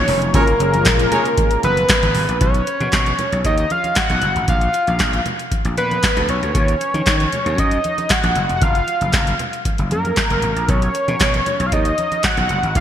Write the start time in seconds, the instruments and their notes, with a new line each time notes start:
Already playing: analog synth pad A#2 D#3 F#3 C#4 D#4, analog synth lead C#5
0.07 slap bass F1, open hi-hat, low conga
0.22 closed hi-hat
0.34 slap bass F#1, analog synth pad C#3 G#3 F4, analog polysynth C#4 F4 G#4 A#4, horn section G#4 A#4 C#5, analog synth lead A#4, kick, closed hi-hat, low conga
0.47 closed hi-hat
0.59 slap bass F#1, analog polysynth C#4 F4 G#4 A#4, closed hi-hat, muted conga
0.74 closed hi-hat, high conga
0.85 slap bass A#1, kick, snare, clap, closed hi-hat, muted conga
0.99 closed hi-hat, high conga
1.12 horn section G#4 A#4 C#5, closed hi-hat, muted conga, low conga
1.25 closed hi-hat
1.37 kick, closed hi-hat, high conga
1.51 closed hi-hat
1.63 slap bass F#1, analog synth lead B4, closed hi-hat, muted conga, high conga
1.77 closed hi-hat, high conga
1.89 kick, snare, clap, closed hi-hat, muted conga
2.03 slap bass G#1, closed hi-hat, high conga
2.14 slap bass G#1, open hi-hat, low conga
2.29 slap bass A#1, closed hi-hat
2.41 slap bass B1, analog synth lead C#5, kick, closed hi-hat, muted conga, low conga
2.54 closed hi-hat
2.67 closed hi-hat, muted conga
2.80 slap bass B2, closed hi-hat, high conga
2.92 slap bass B2, kick, snare, clap, closed hi-hat, muted conga
3.06 closed hi-hat, high conga
3.19 closed hi-hat, muted conga, low conga
3.32 slap bass B1, closed hi-hat
3.44 slap bass D#2, analog synth lead D#5, kick, closed hi-hat, muted conga, high conga
3.58 closed hi-hat
3.70 analog synth lead F5, closed hi-hat, muted conga, high conga
3.84 closed hi-hat, high conga
3.95 analog synth lead F#5, kick, snare, clap, closed hi-hat
4.10 slap bass B1, closed hi-hat, high conga
4.21 slap bass F#1, closed hi-hat, muted conga, low conga
4.36 slap bass G#1, closed hi-hat
4.48 slap bass A#1, analog synth lead F5, kick, closed hi-hat, low conga
4.61 closed hi-hat
4.73 closed hi-hat, muted conga
4.87 slap bass A#1, closed hi-hat, high conga
4.99 slap bass A#1, kick, snare, clap, closed hi-hat
5.13 closed hi-hat, high conga
5.26 closed hi-hat, muted conga, low conga
5.39 closed hi-hat
5.51 kick, closed hi-hat, muted conga, high conga
5.65 slap bass A#1, closed hi-hat
5.77 slap bass A#2, analog synth lead B4, closed hi-hat, muted conga, high conga
5.91 closed hi-hat, high conga
6.03 kick, snare, clap, closed hi-hat
6.17 slap bass D2, closed hi-hat, high conga
6.28 slap bass B1, analog synth lead C#5, closed hi-hat, muted conga, low conga
6.42 slap bass D2, closed hi-hat
6.55 slap bass D#2, kick, closed hi-hat, muted conga, low conga
6.68 closed hi-hat
6.80 closed hi-hat, muted conga
6.94 slap bass D#3, closed hi-hat, high conga
7.06 slap bass D#3, kick, snare, clap, closed hi-hat, muted conga
7.20 closed hi-hat, high conga
7.32 closed hi-hat, muted conga, low conga
7.46 slap bass D#2, closed hi-hat
7.58 slap bass F#2, analog synth lead D#5, kick, closed hi-hat, high conga
7.71 closed hi-hat
7.84 closed hi-hat, muted conga, high conga
7.98 closed hi-hat, high conga
8.09 analog synth lead F#5, kick, snare, clap, closed hi-hat
8.23 slap bass A#1, closed hi-hat, high conga
8.35 slap bass F#1, closed hi-hat, muted conga, low conga
8.49 slap bass F1, closed hi-hat
8.56 analog synth lead F#5
8.61 slap bass F#1, analog synth lead F5, kick, closed hi-hat, muted conga, low conga
8.75 closed hi-hat
8.87 closed hi-hat, muted conga
9.01 slap bass F#1, closed hi-hat, high conga
9.13 slap bass F#1, kick, snare, clap, closed hi-hat, muted conga
9.27 closed hi-hat, high conga
9.39 closed hi-hat, muted conga, low conga
9.53 closed hi-hat
9.65 kick, closed hi-hat, muted conga, high conga
9.78 slap bass F#1, closed hi-hat
9.91 slap bass F#2, analog synth lead A#4, closed hi-hat, muted conga, high conga
10.05 closed hi-hat, high conga
10.16 kick, snare, clap, closed hi-hat, muted conga
10.30 slap bass F#1, closed hi-hat, high conga
10.42 slap bass G#1, closed hi-hat, muted conga, low conga
10.56 slap bass A#1, closed hi-hat
10.68 slap bass B1, analog synth lead C#5, kick, closed hi-hat, muted conga, low conga
10.82 closed hi-hat
10.94 closed hi-hat, muted conga
11.08 slap bass B2, closed hi-hat, high conga
11.20 slap bass B2, kick, snare, clap, closed hi-hat, muted conga
11.34 closed hi-hat, high conga
11.46 closed hi-hat, muted conga, low conga
11.60 slap bass B1, closed hi-hat
11.66 analog synth lead F5
11.72 slap bass D#2, analog synth lead D#5, kick, closed hi-hat, muted conga, high conga
11.85 closed hi-hat
11.98 closed hi-hat, muted conga, high conga
12.12 closed hi-hat, high conga
12.23 analog synth lead F#5, kick, snare, clap, closed hi-hat
12.37 slap bass B1, closed hi-hat, high conga
12.49 slap bass F#1, closed hi-hat, low conga
12.63 slap bass G#1, closed hi-hat
12.75 slap bass A#1, analog synth lead F5, kick, closed hi-hat, muted conga, low conga